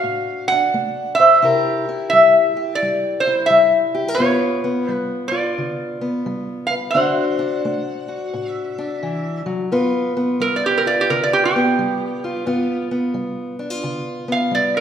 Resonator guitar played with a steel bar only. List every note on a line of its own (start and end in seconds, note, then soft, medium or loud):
0.00 0.47 F5 loud
0.48 1.14 F#5 medium
1.15 2.08 E5 medium
2.10 2.76 E5 loud
2.75 3.24 D5 medium
3.20 3.46 C5 medium
3.46 4.19 E5 medium
4.15 4.93 C#5 medium
4.93 5.26 B4 medium
5.28 6.72 D5 medium
6.67 6.74 F5 medium
6.91 8.51 F#5 medium
8.51 9.40 E5 medium
10.41 10.55 A#4 medium
10.56 10.64 D5 medium
10.66 10.85 G4 medium
10.78 10.83 A#4 medium
10.87 11.01 D5 medium
11.01 11.09 G4 medium
11.10 11.24 A#4 medium
11.23 11.32 D5 medium
11.33 11.44 G4 medium
11.45 12.84 G4 medium
14.32 14.54 F5 medium
14.55 14.77 D5 medium
14.77 14.80 A#4 medium